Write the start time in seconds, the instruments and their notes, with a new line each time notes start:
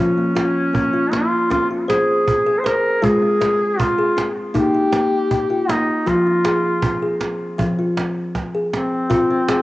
Already playing: kalimba F3 F4, duduk C#4
0.18 kalimba A#3
0.35 kalimba F4, cajon slap
0.73 kalimba A#3, cajon bass
0.94 kalimba F4
1.12 kalimba A#3, duduk F4, cajon slap
1.32 cajon slap
1.50 kalimba C4 C#4, duduk F4, cajon bass, cajon slap
1.70 kalimba F4
1.88 duduk G#4, kalimba C5, cajon slap
2.28 cajon bass
2.46 kalimba G#4, cajon slap
2.59 duduk C5
2.64 duduk A#4, kalimba C5, cajon slap
3.02 kalimba G#3 F4, duduk G#4, cajon bass
3.22 kalimba C4
3.41 kalimba G#4, cajon slap
3.79 kalimba C4, duduk F4, cajon bass
3.99 kalimba G#4
4.17 kalimba C4, cajon slap
4.37 cajon slap
4.54 kalimba A#3 D#4, duduk G4, cajon bass
4.75 kalimba D#4, cajon slap
4.92 kalimba A#3, cajon slap
5.31 cajon bass
5.50 kalimba F4
5.69 kalimba A#3, duduk D#4, cajon slap
6.07 kalimba F3 F4, duduk F4, cajon bass, cajon slap
6.27 kalimba C4
6.45 kalimba G#4, cajon slap
6.82 kalimba C4, cajon bass
7.02 kalimba G#4
7.20 kalimba C4, cajon slap
7.58 kalimba F3 C4, cajon bass
7.79 kalimba F4
7.97 kalimba C4, cajon slap
8.35 cajon bass, cajon slap
8.55 kalimba G#4
8.73 kalimba C4, duduk C4, cajon slap
9.10 kalimba F4, cajon bass
9.31 kalimba C4
9.48 kalimba G#4, cajon slap